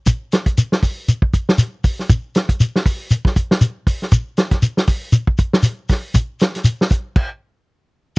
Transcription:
0.06 kick, closed hi-hat, shekere
0.32 snare, closed hi-hat, shekere
0.46 kick, closed hi-hat
0.57 closed hi-hat, shekere
0.72 snare
0.82 kick, open hi-hat, shekere
1.08 closed hi-hat, shekere
1.22 kick
1.34 kick, closed hi-hat, shekere
1.49 snare
1.58 closed hi-hat, shekere
1.84 kick, open hi-hat, shekere
1.99 snare
2.10 kick, closed hi-hat, shekere
2.35 snare, closed hi-hat, shekere
2.49 kick, closed hi-hat
2.60 closed hi-hat, shekere
2.76 snare
2.86 kick, open hi-hat, shekere
3.11 closed hi-hat, shekere
3.25 kick, snare
3.36 kick, closed hi-hat, shekere
3.51 snare
3.61 closed hi-hat, shekere
3.87 kick, open hi-hat, shekere
4.02 snare
4.11 kick, closed hi-hat, shekere
4.37 snare, closed hi-hat, shekere
4.51 kick, snare, closed hi-hat
4.62 closed hi-hat, shekere
4.77 snare
4.87 kick, open hi-hat, shekere
5.12 closed hi-hat, shekere
5.27 kick
5.38 kick, closed hi-hat, shekere
5.53 snare
5.63 closed hi-hat, shekere
5.89 kick, snare, open hi-hat, shekere
6.14 kick, closed hi-hat, shekere
6.40 snare, closed hi-hat, shekere
6.55 snare, closed hi-hat
6.64 closed hi-hat, shekere
6.81 snare
6.90 kick, closed hi-hat, shekere
7.16 kick, crash

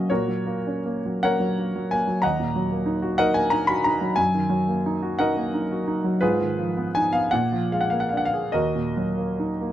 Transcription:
Already playing: F#2 C#3 F#3 A#3 C#4 F#4 A#4 D#5 F5 F#5
0.10 A#2 F#4 A#4 C#5
0.28 F#3
0.46 A#3
0.67 C#4
0.86 A#3
1.06 F#3
1.23 A#3 A#4 C#5 F#5
1.40 F#3
1.59 A#3
1.76 F#3
1.91 A#3 G#5
2.07 F#3
2.22 D#2 D#5 F#5 A#5
2.40 A#2
2.56 F#3
2.72 A#3
2.86 D#4
3.02 F#4
3.18 D#4 A#4 D#5 F#5
3.34 A#3 G#5
3.50 D#4 A#5
3.67 F#4 B5
3.84 D#4 A#5
4.01 F#3
4.16 F#2 G#5
4.34 D#3
4.50 F#3
4.68 A#3
4.86 D#4
5.03 F#4
5.19 D#4 A#4 D#5 F#5
5.37 A#3
5.54 D#4
5.71 F#4
5.87 D#4
6.04 F#3
6.21 G#2 F4 G#4 B4
6.41 D#3
6.59 F3
6.77 B3
6.95 D#4 G#5
7.13 B3 F5
7.31 A#2 F#5
7.52 F3
7.72 G#3 F5
7.81 F#5
7.90 A#3 F5
8.00 F#5
8.09 D4 F5
8.17 F#5
8.25 F5
8.34 G#4
8.52 D#2 F#4 A#4 D#5
8.75 A#2
8.97 F#3
9.18 A#3
9.40 D#4
9.61 A#3

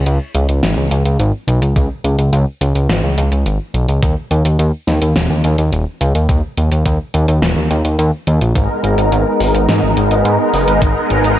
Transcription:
0.06 C#2, closed hi-hat
0.35 C#2, closed hi-hat
0.49 C#2, closed hi-hat
0.63 G#1, snare, closed hi-hat
0.77 C#2
0.91 C#2, closed hi-hat
1.05 C#2, closed hi-hat
1.19 G#1, closed hi-hat
1.48 B1, closed hi-hat
1.62 C#2, closed hi-hat
1.76 C#2, kick, closed hi-hat
2.04 C#2, closed hi-hat
2.18 C#2, closed hi-hat
2.33 C#2, closed hi-hat
2.61 C#2, closed hi-hat
2.75 C#2, closed hi-hat
2.89 G#1, snare, closed hi-hat
3.03 C#2
3.17 C#2, closed hi-hat
3.32 C#2, closed hi-hat
3.46 G#1, closed hi-hat
3.74 B1, closed hi-hat
3.88 C#2, closed hi-hat
4.03 D#2, kick, closed hi-hat
4.31 D#2, closed hi-hat
4.45 D#2, closed hi-hat
4.59 D#2, closed hi-hat
4.87 D#2, snare, closed hi-hat
5.02 D#2, closed hi-hat
5.16 D#1, snare, closed hi-hat
5.30 D#2
5.44 D#2, closed hi-hat
5.58 D#2, closed hi-hat
5.72 D#1, closed hi-hat
6.01 C#2, closed hi-hat
6.15 D#2, closed hi-hat
6.29 D#2, kick, closed hi-hat
6.57 D#2, closed hi-hat
6.72 D#2, closed hi-hat
6.86 D#2, kick, closed hi-hat
7.14 D#2, closed hi-hat
7.28 D#2, closed hi-hat
7.42 D#1, snare, closed hi-hat
7.56 D#2
7.70 D#2, closed hi-hat
7.85 D#2, closed hi-hat
7.99 D#2, closed hi-hat
8.27 D#2, closed hi-hat
8.41 A#1, closed hi-hat
8.55 G#1 G#3 B3 D#4 A#4, kick, closed hi-hat
8.84 G#1, closed hi-hat
8.98 G#1, closed hi-hat
9.12 G#1, closed hi-hat
9.40 G#1, open hi-hat
9.54 G#1, closed hi-hat
9.69 G#2, snare, closed hi-hat
9.83 G#1
9.97 G#1, closed hi-hat
10.11 G#1, closed hi-hat
10.25 G#2, closed hi-hat
10.54 F#1, open hi-hat
10.68 G#1, closed hi-hat
10.82 G#1, kick, closed hi-hat
11.10 G#1, closed hi-hat
11.24 G#1, closed hi-hat

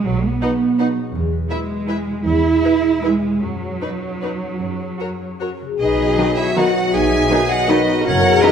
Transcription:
Already playing: F#3 F#4 B4
0.05 B1 B2 F#3
0.23 B3 B4
0.42 D#4 F#4 B4 F#5
0.62 B4
0.79 D#4 F#4 B4 F#5
0.98 F#3
1.15 E2
1.32 B4
1.49 G#3 E4 B4 E5
1.70 B4
1.88 E4 B4 E5
2.07 B2
2.26 E2 E4
2.44 B4
2.63 E4 B4 E5
2.82 B4
3.02 G#3 E4 B4 E5
3.21 B2
3.40 F#2 F#3
3.61 B4
3.81 D#4 B4
4.02 B4
4.21 D#4 B4
4.42 F#3
4.61 F#2
4.80 C#5
5.00 C#4 F#4 A#4 C#5
5.21 C#5
5.40 C#4 F#4 A#4 C#5
5.61 C#3
5.79 B1 B2 F#3 B3 D#4 F#4 G#4 B4 D#5
5.98 F#3
6.17 D#3 F#3 B3 D#4
6.36 D#4 E4 C#5 E5
6.56 D#3 F#3 B3 D#4 F#4 B4 D#5 F#5
6.75 D#4
6.92 B1 B2 D#4 G#4 E5 G#5
7.11 F#3
7.30 D#3 F#3 B3 D#4 G#4
7.49 D#4 F#4 D#5 F#5
7.68 D#3 F#3 B3 D#4 F#4 B4 D#5
7.88 D#4
8.05 F#1 F#2 C#3 F#3 E4 F#4 A#4 C#5 F#5
8.24 C#3
8.42 E3 F#3 A#3 C#4 D#4 B4 D#5

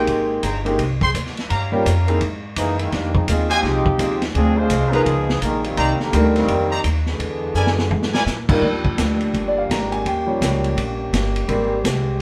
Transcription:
Already playing: G#3 A#3 C4 D#4 G4
0.07 G#1, kick, ride
0.43 G1 G#4 C5 G5 A#5, kick, hi-hat pedal, ride
0.65 G#3 A#3 C4 D#4 G4, ride
0.79 C2, kick, ride
1.01 G#4 C5 G5 C6, kick
1.14 D#2, kick, hi-hat pedal, ride
1.26 snare
1.37 snare, ride
1.50 G2 G4 C#5 F5 A#5, kick, ride
1.72 G3 A#3 C#4 F4 G4
1.86 F2, kick, hi-hat pedal, ride
2.07 A#3 C4 D#4 E4 G#4, ride
2.21 G#2, kick, ride
2.56 F#2 E3 G#3 A#3 D#4, kick, hi-hat pedal, ride
2.79 D#3 G#3 A#3 E4, ride
2.92 F2 D#3 G3 A#3 D4, kick, snare, ride
3.14 F3 G#3 C4 D#4, kick
3.28 D#2 G#3 C4 D#4 F4, kick, hi-hat pedal, ride
3.50 F3 C4 D#4 F4 G4 C5 D#5 G#5, ride
3.62 C2 G#3 C4 D#4 F4 G4, kick, snare
3.86 kick
3.98 D#2 G#3 C4 D#4 F4 G4, kick, hi-hat pedal, ride
4.22 snare, ride
4.34 D2 F3 C4 D4 G#4, kick, ride
4.56 G#3 D4 F4 C5
4.70 C2, kick, hi-hat pedal, ride
4.92 F3 G#3 B3 D#4 F4 G#4 A#4 B4 D#5 A#5, ride
5.06 C#2, kick, ride
5.29 snare
5.41 A#1 D#3 F3 G#3 A#3, kick, hi-hat pedal, ride
5.64 D#3 G3 A#3 C4, ride
5.77 C2 D#4 C5 D5 A#5, kick, ride
6.00 D3 D#3 G3 A#3, muted upright bass stroke, snare
6.13 D2 G3 C4 D4 D#4 A#4, kick, hi-hat pedal, ride
6.36 D#3 G3 A#3 C4, snare, ride
6.48 F2, kick, ride
6.71 D#4 C5 D5 A#5
6.84 D#2, kick, hi-hat pedal, ride
7.06 D3 E3 G#3 B3, snare
7.20 E2, kick, ride
7.54 F#2 E4 A#4 D5 G#5, hi-hat pedal
7.67 snare
7.78 snare
7.91 G#2, floor tom
8.02 snare
8.13 E4 A#4 D5 G#5, snare
8.26 A#2, snare, hi-hat pedal
8.49 G3 D4 D#4 F4 A#4, kick, crash
8.62 D#2 F3 G3 A#3 D4 G4, kick
8.85 kick
8.98 D2, kick, snare, hi-hat pedal, ride
9.20 ride
9.34 G1, kick, ride
9.48 D5
9.58 F5
9.70 G#1 A#5, kick, snare, hi-hat pedal, ride
9.92 G#5, ride
10.05 D#2 C#4 G5, kick, ride
10.26 F3 G3 C#4
10.41 C#2, kick, snare, hi-hat pedal, ride
10.64 ride
10.77 A#1, kick, ride
11.13 G1, kick, snare, hi-hat pedal, ride
11.36 ride
11.47 G#1 G3 G#3 A#3 C4, kick, ride
11.84 C2, kick, snare, hi-hat pedal, ride

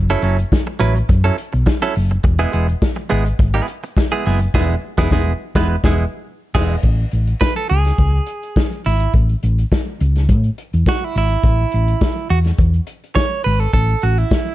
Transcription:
Already playing: F#1
0.09 F#3 C#4 E4 A4, closed hi-hat
0.22 F#1 F#3 C#4 E4 A4, closed hi-hat
0.39 closed hi-hat
0.52 kick, snare
0.67 muted clean electric guitar stroke
0.80 A1 F#3 C#4 E4 B4, closed hi-hat
0.95 muted clean electric guitar stroke, closed hi-hat
1.09 F#2, muted clean electric guitar stroke, kick, closed hi-hat
1.24 F#3 C#4 E4 A4, closed hi-hat
1.37 muted clean electric guitar stroke, closed hi-hat
1.53 B1, muted clean electric guitar stroke, closed hi-hat
1.66 muted clean electric guitar stroke, kick, snare
1.82 F#3 C#4 E4 A4, closed hi-hat
1.95 F#1, open hi-hat
2.10 muted clean electric guitar stroke, closed hi-hat
2.23 E1, muted clean electric guitar stroke, kick, closed hi-hat
2.39 G#3 B3 E4 G#4, closed hi-hat
2.52 E1 G#3 B3 E4 G#4, closed hi-hat
2.69 closed hi-hat
2.82 kick, snare
2.96 muted clean electric guitar stroke, closed hi-hat
3.10 G#1 G#3 B3 E4 G#4, closed hi-hat
3.25 muted clean electric guitar stroke, closed hi-hat
3.39 G#1, muted clean electric guitar stroke, kick, closed hi-hat
3.54 G#3 B3 E4 G#4
3.67 muted clean electric guitar stroke, closed hi-hat
3.84 muted clean electric guitar stroke, closed hi-hat
3.97 muted clean electric guitar stroke, kick, snare
4.12 G#3 B3 E4 G#4, closed hi-hat
4.25 F#1 G#3 B3 E4 G#4, open hi-hat
4.41 muted clean electric guitar stroke, closed hi-hat
4.54 E1 G#3 B3 E4 G#4, kick, snare, crash
4.98 E1 G#3 B3 E4 G#4, kick, snare
5.11 E1 G#3 B3 E4 G#4, kick, snare
5.55 E1 G#3 B3 E4 B4, kick, snare
5.84 E1 G#3 B3 E4 G#4, kick, snare
6.55 E1 G#3 B3 E4 G#4, kick, snare, crash
6.83 A1, kick, closed hi-hat
7.12 A1, closed hi-hat
7.27 closed hi-hat
7.41 B4, kick, snare
7.56 A4, closed hi-hat
7.69 C#2 G#4, closed hi-hat
7.85 snare, closed hi-hat
7.98 C#2, kick, closed hi-hat
8.27 closed hi-hat
8.43 closed hi-hat
8.56 kick, snare
8.73 closed hi-hat
8.86 G#1 E4, open hi-hat
9.00 closed hi-hat
9.14 A1, kick, closed hi-hat
9.29 closed hi-hat
9.43 A1, closed hi-hat
9.58 closed hi-hat
9.72 kick, snare
10.00 C#2, closed hi-hat
10.15 snare, closed hi-hat
10.29 A2, kick, closed hi-hat
10.44 closed hi-hat
10.58 closed hi-hat
10.73 E2, closed hi-hat
10.86 F#4, kick, snare
11.04 E4
11.15 G#1 E4, open hi-hat
11.29 closed hi-hat
11.43 A1, kick, closed hi-hat
11.72 A1, closed hi-hat
11.88 closed hi-hat
12.01 kick, snare
12.16 closed hi-hat
12.30 E2 F#4, closed hi-hat
12.44 snare, closed hi-hat
12.58 E2, kick, closed hi-hat
12.73 closed hi-hat
12.87 closed hi-hat
13.04 closed hi-hat
13.15 C#5, kick, snare
13.44 G#1 B4, open hi-hat
13.60 A4, closed hi-hat
13.73 A1 A4, kick, closed hi-hat
13.89 closed hi-hat
14.02 A1 F#4, closed hi-hat
14.18 E4, closed hi-hat
14.31 kick, snare
14.47 closed hi-hat

